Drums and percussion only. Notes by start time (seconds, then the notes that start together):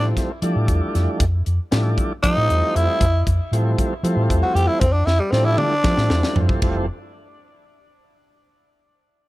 0.17 kick, snare, closed hi-hat
0.42 closed hi-hat
0.68 kick, closed hi-hat
0.95 snare, closed hi-hat
1.20 kick, closed hi-hat
1.46 closed hi-hat
1.72 snare, closed hi-hat
1.98 kick, closed hi-hat
2.24 kick, closed hi-hat
2.50 closed hi-hat
2.76 closed hi-hat
3.01 kick, closed hi-hat
3.27 kick, closed hi-hat
3.53 closed hi-hat
3.78 kick, closed hi-hat
4.04 closed hi-hat
4.30 kick, closed hi-hat
4.56 closed hi-hat
4.81 kick, closed hi-hat
5.07 snare
5.33 snare
5.58 mid tom
5.84 kick, snare
5.97 snare
6.10 snare
6.23 snare
6.36 floor tom
6.49 kick
6.62 kick, ride bell